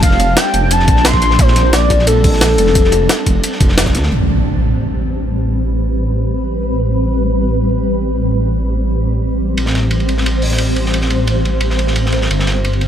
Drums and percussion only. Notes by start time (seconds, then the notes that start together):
0.03 kick, closed hi-hat, ride
0.11 snare
0.19 snare, closed hi-hat, ride
0.36 snare, closed hi-hat, ride
0.54 closed hi-hat, ride
0.71 closed hi-hat, ride
0.80 snare
0.88 kick, closed hi-hat, ride
0.96 snare
1.05 snare, closed hi-hat, ride
1.13 kick, snare
1.21 snare, closed hi-hat, ride
1.31 snare
1.39 kick, closed hi-hat, ride
1.48 snare
1.56 snare, closed hi-hat, ride
1.73 snare, closed hi-hat, ride
1.81 ride
1.90 kick, snare, closed hi-hat, ride
1.99 snare
2.07 closed hi-hat, ride
2.24 kick, closed hi-hat, open hi-hat
2.33 snare
2.41 snare, closed hi-hat, ride
2.58 closed hi-hat, ride
2.67 snare
2.75 kick, closed hi-hat, ride
2.84 snare
2.92 snare, closed hi-hat, ride
3.09 snare, closed hi-hat, ride
3.26 kick, closed hi-hat, ride
3.44 closed hi-hat, ride
3.52 snare
3.60 kick, closed hi-hat, ride
3.69 snare
3.78 snare, closed hi-hat, ride
3.86 kick, snare
3.94 snare, closed hi-hat, ride
4.03 snare
9.57 ride
9.66 snare
9.74 snare, ride
9.91 ride
10.00 ride
10.09 ride
10.18 snare
10.26 ride
10.42 open hi-hat
10.52 snare
10.58 ride
10.76 ride
10.86 snare
10.94 ride
11.01 snare
11.10 ride
11.27 ride
11.45 ride
11.61 ride
11.70 snare
11.79 ride
11.87 snare
11.96 ride
12.06 snare
12.12 snare, ride
12.22 snare
12.31 ride
12.39 snare
12.47 snare, ride
12.65 ride
12.73 ride
12.81 ride